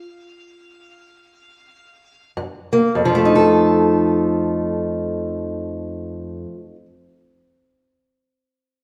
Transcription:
0.00 2.31 F5 medium
2.37 2.89 F#2 medium
2.73 2.92 A#3 medium
2.95 6.45 F2 medium
3.05 6.55 F3 medium
3.15 6.65 A3 medium
3.25 6.75 D#4 medium
3.35 6.85 A4 medium

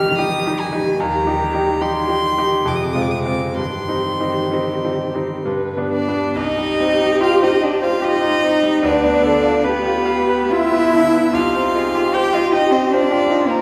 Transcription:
0.00 1.03 C2 medium
0.00 2.62 D#3 medium
0.00 0.18 G3 medium
0.00 0.18 D#4 medium
0.00 0.19 G4 medium
0.00 0.97 G4 medium
0.00 0.17 F6 loud
0.18 0.43 G3 medium
0.18 0.43 D#4 medium
0.18 0.43 G4 medium
0.18 0.61 D#6 loud
0.46 0.71 G3 medium
0.46 0.71 D#4 soft
0.46 0.71 G4 medium
0.59 1.02 G#5 loud
0.72 0.97 G3 soft
0.72 0.97 D#4 medium
0.72 0.97 G4 medium
1.00 1.26 D#2 medium
1.00 2.62 G4 medium
1.00 1.83 A#5 medium
1.26 1.51 G3 soft
1.26 1.52 D#4 medium
1.26 1.52 G4 medium
1.53 1.79 G3 medium
1.53 1.79 D#4 medium
1.53 1.79 G4 medium
1.81 2.06 G3 medium
1.81 2.07 D#4 soft
1.81 2.07 G4 medium
1.81 2.69 C6 loud
2.08 2.34 G3 soft
2.08 2.34 D#4 soft
2.08 2.35 G4 soft
2.37 2.64 G3 soft
2.37 2.64 D#4 soft
2.37 2.64 G4 medium
2.65 2.95 F2 medium
2.65 3.52 C3 medium
2.65 3.53 G#4 medium
2.65 2.77 D6 medium
2.75 2.85 D#6 medium
2.84 2.95 D6 medium
2.93 3.22 G#3 soft
2.93 3.22 C4 soft
2.93 3.23 F4 soft
2.93 3.03 D#6 medium
3.02 3.12 D6 medium
3.11 3.20 D#6 medium
3.18 3.57 D6 medium
3.26 3.54 G#3 soft
3.26 3.54 C4 soft
3.26 3.54 F4 medium
3.56 3.87 G2 medium
3.56 5.43 D#3 medium
3.56 5.43 G4 medium
3.56 5.43 C6 medium
3.88 4.17 G3 soft
3.88 4.17 C4 soft
3.88 4.17 D#4 medium
4.20 4.49 G3 soft
4.20 4.49 C4 soft
4.20 4.49 D#4 medium
4.51 4.80 G3 soft
4.51 4.81 C4 soft
4.51 4.81 D#4 medium
4.84 5.12 G3 soft
4.84 5.13 C4 soft
4.84 5.13 D#4 soft
5.14 5.43 G3 soft
5.14 5.43 C4 soft
5.14 5.44 D#4 soft
5.45 5.76 G2 medium
5.45 5.90 D3 medium
5.45 6.13 B4 medium
5.77 6.05 G3 soft
5.77 6.05 B3 soft
5.77 6.06 D4 soft
5.93 6.38 D4 medium
5.93 6.35 D5 medium
6.08 6.35 G3 soft
6.08 6.35 B3 soft
6.08 6.35 D4 soft
6.36 8.80 C2 medium
6.36 7.22 D#4 medium
6.36 8.06 G4 medium
6.36 7.20 D#5 loud
6.58 6.92 G3 medium
6.80 7.14 C4 medium
7.00 7.34 D#4 medium
7.21 7.45 F4 medium
7.21 7.55 G4 medium
7.21 7.43 F5 loud
7.42 7.64 D#4 medium
7.42 7.75 C5 medium
7.42 7.65 D#5 medium
7.62 7.83 D4 medium
7.62 7.85 D5 medium
7.62 7.95 D#5 medium
7.82 8.03 F4 medium
7.82 8.15 C5 medium
7.82 8.06 F5 medium
8.02 8.87 D#4 medium
8.02 8.47 F4 medium
8.02 8.35 G4 medium
8.02 8.83 D#5 loud
8.22 8.55 D#4 medium
8.42 8.76 C4 medium
8.42 8.85 D#4 medium
8.63 8.84 G3 medium
8.83 11.30 D2 medium
8.83 9.67 D4 medium
8.83 9.28 B4 medium
8.83 9.65 D5 loud
9.03 9.36 B3 medium
9.22 9.56 D3 medium
9.26 9.68 A4 medium
9.43 9.76 F4 medium
9.64 10.52 B3 medium
9.64 10.53 G4 medium
9.64 9.98 B4 medium
9.64 10.53 B4 loud
9.86 10.21 F4 medium
10.06 10.42 F5 medium
10.28 10.64 B4 medium
10.50 11.34 E4 medium
10.50 10.84 F4 medium
10.50 10.95 F4 medium
10.50 11.36 E5 loud
10.72 11.06 B3 medium
10.93 11.26 D3 soft
10.93 11.34 E4 medium
11.12 11.34 B3 medium
11.33 13.62 C2 medium
11.33 11.77 D#4 medium
11.33 12.16 F4 medium
11.33 12.15 F5 loud
11.55 11.87 C4 medium
11.75 12.07 D#4 medium
11.75 12.16 G#4 medium
11.95 12.26 G4 medium
12.14 12.35 G4 loud
12.14 12.95 G4 medium
12.14 12.46 C5 medium
12.14 12.36 G5 loud
12.33 12.54 F4 medium
12.33 12.65 D#5 medium
12.33 12.52 F5 medium
12.53 12.73 D#4 medium
12.53 12.74 D#5 loud
12.53 12.85 G5 medium
12.71 12.93 C4 medium
12.71 12.94 C5 medium
12.71 13.04 D#5 medium
12.91 13.50 D4 medium
12.91 13.62 F4 medium
12.91 13.24 C5 medium
12.91 13.51 D5 loud
13.12 13.42 G4 medium
13.30 13.61 D#4 medium
13.48 13.62 A#3 medium
13.48 13.62 C4 medium
13.48 13.62 A#4 medium

